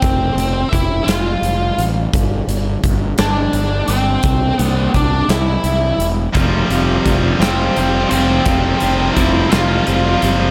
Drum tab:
HH |xxxxxx|xxxxxx|xxxxxx|xxxxxx|
SD |---o--|---o--|---o--|---o--|
BD |o-o---|o-o---|o-o---|o-o---|

HH |xxxxxx|
SD |---o--|
BD |o-o---|